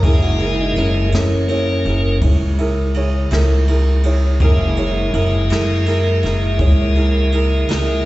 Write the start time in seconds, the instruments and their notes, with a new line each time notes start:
0.03 upright bass F#1, tonewheel organ G#3 A#3 E4 G#4, upright piano E4 G#4 A#4, kick, ride
0.22 tonewheel organ F#4
0.39 upright piano E4 G#4 A#4, tonewheel organ G#4, ride
0.61 tonewheel organ D#4
0.76 upright bass F#1, tonewheel organ C#4, upright piano E4 G#4 A#4, ride
0.96 tonewheel organ A#3
1.12 upright bass F#2, tonewheel organ C#4, upright piano E4 G#4 A#4, snare, ride
1.48 tonewheel organ A#3 C#4, upright piano E4 G#4 C#5, ride
1.85 upright bass F#1, upright piano E4 G#4 A#4, ride
2.21 upright bass C#2, upright piano E4 G#4 C#5, kick, ride
2.58 upright piano E4 G#4 A#4, ride
2.94 upright piano E4 G#4 C#5, ride
3.31 upright bass C#2, upright piano E4 G#4 A#4, snare, ride
3.67 upright piano E4 G#4 A#4, ride
4.04 upright piano E4 G#4 C#5, ride
4.40 upright bass F#1, tonewheel organ G#3 A#3 E4, upright piano E4 G#4 A#4, kick, ride
4.77 upright piano E4 G#4 C#5, ride
5.13 upright bass F#1, upright piano E4 G#4 A#4, ride
5.50 upright bass F#2, upright piano E4 G#4 A#4, snare, ride
5.86 upright piano E4 G#4 A#4, ride
6.23 upright bass F#1, upright piano E4 G#4 A#4, snare, ride
6.59 upright bass C#2, upright piano E4 G#4 C#5, kick, ride
6.95 upright piano E4 G#4 A#4, ride
7.32 upright piano E4 G#4 A#4, ride
7.68 upright bass C#2, upright piano E4 G#4 A#4, snare, ride